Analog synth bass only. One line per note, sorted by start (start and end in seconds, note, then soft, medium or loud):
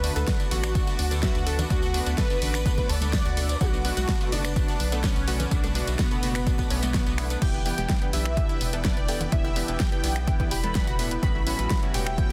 0.00 0.11 D2 loud
0.16 0.24 D2 medium
0.51 0.82 A1 loud
0.99 1.30 D2 medium
1.35 1.65 D2 medium
1.70 2.01 D2 loud
2.06 2.15 D2 medium
2.42 2.72 A1 medium
2.89 3.20 D2 medium
3.25 3.56 D2 medium
3.61 3.91 B1 loud
3.97 4.05 B1 medium
4.32 4.63 F#1 medium
4.80 5.11 B1 medium
5.16 5.46 B1 medium
5.51 5.82 B1 loud
5.87 5.96 B1 medium
6.23 6.53 F#1 loud
6.70 7.01 B1 medium
7.06 7.37 B1 medium
7.42 7.72 E1 loud
7.78 7.86 E1 loud
8.13 8.44 B1 medium
8.61 8.91 E1 medium
8.97 9.27 E1 medium
9.32 9.63 E1 loud
9.68 9.77 E1 medium
10.04 10.34 B1 medium
10.51 10.82 E1 medium
10.87 11.18 E1 medium
11.23 11.53 A1 loud
11.59 11.67 A1 medium
11.94 12.25 E1 medium